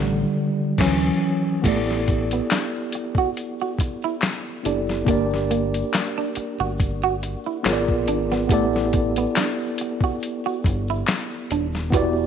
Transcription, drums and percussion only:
0.78 kick loud
0.78 snare loud
0.78 crash medium
1.64 kick loud
1.64 closed hi-hat medium
1.64 crash medium
1.64 shaker medium
1.87 snare soft
1.87 shaker soft
2.08 kick medium
2.08 closed hi-hat medium
2.31 closed hi-hat medium
2.31 shaker medium
2.50 finger snap medium
2.50 snare loud
2.50 clap medium
2.50 closed hi-hat medium
2.50 shaker medium
2.74 shaker soft
2.92 closed hi-hat medium
3.15 kick medium
3.15 shaker soft
3.34 closed hi-hat medium
3.34 shaker medium
3.59 shaker soft
3.78 kick medium
3.78 closed hi-hat medium
3.78 shaker soft
4.02 shaker soft
4.21 finger snap medium
4.21 snare loud
4.21 clap medium
4.21 closed hi-hat medium
4.21 shaker medium
4.45 shaker soft
4.65 closed hi-hat medium
4.87 snare soft
4.87 shaker soft
5.06 kick loud
5.06 closed hi-hat medium
5.06 shaker medium
5.30 snare soft
5.30 shaker soft
5.51 closed hi-hat medium
5.74 closed hi-hat medium
5.74 shaker soft
5.93 finger snap medium
5.93 snare loud
5.93 clap medium
5.93 closed hi-hat medium
5.93 shaker medium
6.17 shaker soft
6.35 closed hi-hat medium
6.60 shaker soft
6.78 kick medium
6.78 closed hi-hat medium
6.78 shaker medium
7.02 shaker soft
7.21 closed hi-hat medium
7.21 shaker soft
7.45 shaker soft
7.64 finger snap medium
7.64 snare loud
7.64 clap medium
7.64 closed hi-hat medium
7.64 shaker medium
7.88 kick medium
7.88 shaker soft
8.08 closed hi-hat medium
8.30 snare soft
8.30 shaker soft
8.49 kick loud
8.49 closed hi-hat medium
8.49 shaker medium
8.73 snare soft
8.73 shaker soft
8.93 kick medium
8.93 closed hi-hat medium
9.16 closed hi-hat medium
9.16 shaker medium
9.35 finger snap medium
9.35 snare loud
9.35 clap medium
9.35 closed hi-hat medium
9.35 shaker medium
9.59 shaker soft
9.78 closed hi-hat medium
10.01 kick medium
10.01 shaker soft
10.20 closed hi-hat medium
10.20 shaker medium
10.45 shaker soft
10.63 kick medium
10.63 closed hi-hat medium
10.63 shaker medium
10.87 shaker soft
11.06 finger snap medium
11.06 snare loud
11.06 clap medium
11.06 closed hi-hat medium
11.06 shaker medium
11.30 shaker soft
11.51 closed hi-hat medium
11.72 snare soft
11.72 shaker soft
11.92 kick loud
11.92 closed hi-hat medium
11.92 shaker medium
12.16 shaker soft

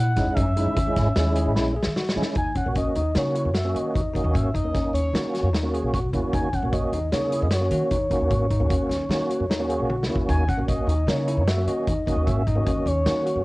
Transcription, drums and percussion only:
0.16 kick medium
0.16 snare soft
0.16 closed hi-hat medium
0.37 kick medium
0.37 closed hi-hat medium
0.57 closed hi-hat medium
0.77 kick loud
0.77 closed hi-hat medium
0.96 kick medium
0.96 snare soft
0.96 closed hi-hat medium
1.16 snare medium
1.16 closed hi-hat medium
1.36 closed hi-hat medium
1.56 snare medium
1.83 snare medium
1.96 snare medium
2.09 snare medium
2.23 snare medium
2.35 kick loud
2.35 closed hi-hat medium
2.55 kick medium
2.55 closed hi-hat soft
2.75 kick medium
2.75 closed hi-hat medium
2.95 closed hi-hat medium
3.15 snare medium
3.15 closed hi-hat medium
3.35 closed hi-hat medium
3.54 snare loud
3.54 closed hi-hat medium
3.76 closed hi-hat medium
3.95 kick medium
3.95 closed hi-hat medium
4.15 kick medium
4.15 closed hi-hat medium
4.35 kick medium
4.35 closed hi-hat medium
4.55 kick medium
4.55 closed hi-hat medium
4.74 kick loud
4.74 snare soft
4.74 closed hi-hat medium
4.95 closed hi-hat medium
5.15 snare medium
5.15 closed hi-hat medium
5.35 snare soft
5.35 closed hi-hat medium
5.54 snare loud
5.54 closed hi-hat medium
5.74 closed hi-hat medium
5.94 kick medium
5.94 closed hi-hat medium
6.13 kick medium
6.13 closed hi-hat medium
6.33 kick medium
6.33 closed hi-hat medium
6.53 kick medium
6.53 closed hi-hat soft
6.73 kick loud
6.73 closed hi-hat medium
6.93 closed hi-hat medium
7.12 snare medium
7.12 closed hi-hat medium
7.32 closed hi-hat medium
7.51 snare loud
7.51 closed hi-hat medium
7.71 closed hi-hat medium
7.91 kick medium
7.91 closed hi-hat medium
8.11 kick medium
8.11 closed hi-hat medium
8.31 kick loud
8.31 closed hi-hat medium
8.51 kick medium
8.51 closed hi-hat medium
8.70 kick loud
8.70 closed hi-hat medium
8.91 snare soft
8.91 closed hi-hat medium
9.11 snare medium
9.11 closed hi-hat medium
9.30 closed hi-hat medium
9.51 snare loud
9.51 closed hi-hat medium
9.70 closed hi-hat medium
9.90 high tom medium
10.03 snare medium
10.16 kick medium
10.29 kick medium
10.29 closed hi-hat medium
10.49 kick medium
10.49 closed hi-hat soft
10.68 kick medium
10.68 closed hi-hat medium
10.89 closed hi-hat medium
11.08 snare medium
11.08 closed hi-hat medium
11.28 closed hi-hat medium
11.48 snare loud
11.48 closed hi-hat medium
11.68 closed hi-hat medium
11.87 kick medium
11.87 closed hi-hat medium
12.07 kick medium
12.07 closed hi-hat medium
12.27 kick medium
12.27 closed hi-hat medium
12.47 kick medium
12.47 closed hi-hat medium
12.67 kick loud
12.67 closed hi-hat medium
12.87 closed hi-hat medium
13.06 snare medium
13.06 closed hi-hat medium
13.26 closed hi-hat medium

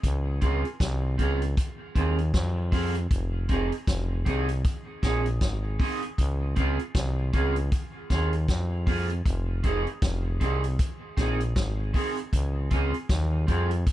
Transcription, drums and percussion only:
0.03 kick loud
0.03 closed hi-hat loud
0.41 kick medium
0.41 closed hi-hat medium
0.65 closed hi-hat soft
0.80 kick loud
0.80 snare loud
0.80 closed hi-hat loud
1.19 kick medium
1.19 closed hi-hat medium
1.42 closed hi-hat medium
1.57 kick loud
1.57 closed hi-hat loud
1.96 kick medium
1.96 closed hi-hat medium
2.18 closed hi-hat medium
2.34 kick loud
2.34 snare medium
2.34 closed hi-hat medium
2.72 kick medium
2.72 open hi-hat medium
2.95 closed hi-hat soft
3.11 kick loud
3.11 closed hi-hat medium
3.49 kick medium
3.49 closed hi-hat medium
3.72 closed hi-hat soft
3.87 kick loud
3.87 snare loud
3.87 closed hi-hat loud
4.26 kick medium
4.26 closed hi-hat medium
4.48 closed hi-hat medium
4.64 kick loud
4.64 closed hi-hat medium
5.03 kick medium
5.03 snare medium
5.03 closed hi-hat medium
5.26 closed hi-hat medium
5.41 kick loud
5.41 snare medium
5.41 closed hi-hat medium
5.80 kick loud
5.80 open hi-hat medium
6.02 closed hi-hat soft
6.18 kick medium
6.18 closed hi-hat medium
6.56 kick medium
6.56 closed hi-hat medium
6.79 closed hi-hat soft
6.95 kick loud
6.95 snare loud
6.95 closed hi-hat loud
7.33 kick medium
7.33 closed hi-hat medium
7.56 closed hi-hat medium
7.72 kick loud
7.72 closed hi-hat medium
8.10 kick medium
8.10 snare medium
8.10 closed hi-hat medium
8.33 closed hi-hat medium
8.48 kick loud
8.48 snare medium
8.48 closed hi-hat medium
8.87 kick loud
8.87 open hi-hat medium
9.10 closed hi-hat medium
9.26 kick loud
9.26 closed hi-hat medium
9.63 kick medium
9.63 closed hi-hat medium
9.87 closed hi-hat soft
10.02 kick loud
10.02 snare loud
10.02 closed hi-hat loud
10.41 kick medium
10.41 closed hi-hat medium
10.64 closed hi-hat medium
10.79 kick loud
10.79 closed hi-hat loud
11.17 kick loud
11.17 snare medium
11.17 closed hi-hat medium
11.40 closed hi-hat medium
11.56 kick loud
11.56 snare loud
11.56 closed hi-hat medium
11.94 kick loud
11.94 open hi-hat medium
12.17 closed hi-hat soft
12.33 kick loud
12.33 closed hi-hat loud
12.71 kick loud
12.71 closed hi-hat medium
12.94 closed hi-hat soft
13.09 kick loud
13.09 snare loud
13.09 closed hi-hat loud
13.48 kick medium
13.48 closed hi-hat medium
13.71 closed hi-hat medium
13.87 kick loud
13.87 closed hi-hat medium

